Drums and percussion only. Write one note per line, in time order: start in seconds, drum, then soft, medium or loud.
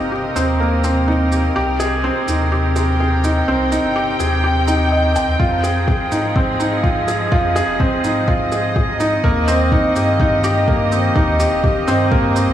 0.36 shaker medium
0.84 shaker medium
1.32 shaker medium
1.80 shaker medium
2.28 shaker medium
2.76 shaker medium
3.24 shaker medium
3.72 shaker medium
4.20 shaker medium
4.68 shaker medium
5.16 shaker medium
5.40 kick loud
5.64 shaker medium
5.88 kick loud
6.12 shaker medium
6.36 kick loud
6.60 shaker medium
6.84 kick loud
7.08 shaker medium
7.32 kick loud
7.56 shaker medium
7.80 kick loud
8.04 shaker medium
8.28 kick loud
8.52 shaker medium
8.76 kick medium
9.00 shaker medium
9.24 kick medium
9.48 shaker medium
9.72 kick loud
9.96 shaker medium
10.20 kick loud
10.44 shaker medium
10.68 kick loud
10.92 shaker medium
11.16 kick loud
11.40 shaker medium
11.64 kick loud
11.88 shaker medium
12.12 kick loud
12.36 shaker medium